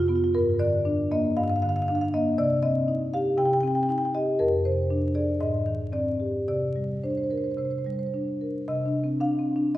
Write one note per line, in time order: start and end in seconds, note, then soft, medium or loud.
0.00 0.32 F2 medium
0.00 0.25 E4 medium
0.00 0.08 F4 medium
0.08 0.35 B3 soft
0.08 0.15 F4 medium
0.15 0.24 F4 medium
0.24 0.31 F4 medium
0.35 1.33 G2 medium
0.35 0.59 A#4 medium
0.59 1.01 D3 soft
0.59 1.09 D5 medium
0.85 1.26 D4 medium
1.11 1.52 A#3 medium
1.11 1.36 D#5 medium
1.37 2.35 G2 medium
1.37 1.43 F5 medium
1.43 1.49 F5 medium
1.49 1.56 F5 medium
1.56 1.62 F5 medium
1.62 2.03 D3 medium
1.62 1.69 F5 medium
1.69 1.76 F5 medium
1.76 1.82 F5 medium
1.82 1.88 F5 medium
1.88 2.29 D4 medium
1.88 1.95 F5 medium
1.95 2.01 F5 medium
2.01 2.10 F5 medium
2.14 2.38 A#3 soft
2.14 2.37 D#5 medium
2.38 3.35 C3 medium
2.38 2.62 D5 medium
2.63 3.03 C4 soft
2.63 3.11 D#5 medium
2.88 3.28 D#4 soft
3.14 3.54 G4 medium
3.14 3.37 F5 medium
3.37 4.36 C3 medium
3.37 3.45 G5 medium
3.45 3.53 G5 medium
3.53 3.60 G5 medium
3.60 4.04 C4 soft
3.60 3.67 G5 medium
3.67 3.75 G5 medium
3.75 3.83 G5 medium
3.83 3.90 G5 medium
3.89 4.30 D#4 medium
3.89 3.98 G5 medium
3.98 4.05 G5 medium
4.05 4.11 G5 medium
4.14 4.40 G4 soft
4.14 4.39 D#5 medium
4.39 5.38 F2 medium
4.39 4.64 A#4 medium
4.65 5.05 C3 soft
4.65 5.14 C5 medium
4.90 5.31 D4 soft
5.15 5.41 G#4 soft
5.15 5.39 D5 medium
5.40 6.44 G#2 medium
5.40 5.90 D#5 medium
5.66 6.09 D#3 soft
5.92 6.36 C4 soft
5.92 6.45 D5 medium
6.20 6.47 G4 soft
6.48 7.55 C3 medium
6.48 7.01 D5 medium
6.76 7.19 G3 soft
7.03 7.47 D4 soft
7.03 7.10 C5 soft
7.10 7.17 C5 soft
7.17 7.24 C5 soft
7.24 7.30 C5 soft
7.30 7.75 A#4 soft
7.30 7.37 C5 soft
7.37 7.44 C5 soft
7.44 7.52 C5 soft
7.52 7.58 C5 soft
7.57 8.66 C3 soft
7.57 7.65 C5 soft
7.65 7.71 C5 soft
7.71 7.78 C5 soft
7.78 7.85 C5 soft
7.85 8.31 G3 soft
7.85 7.92 C5 soft
7.92 7.99 C5 soft
7.99 8.07 C5 soft
8.07 8.10 C5 soft
8.14 8.58 D4 soft
8.41 8.69 A#4 soft
8.68 9.72 C3 medium
8.68 9.20 D#5 medium
8.86 9.15 D4 soft
9.04 9.33 C4 soft
9.21 9.50 D4 soft
9.21 9.72 F5 medium
9.39 9.57 C4 soft
9.56 9.78 D4 soft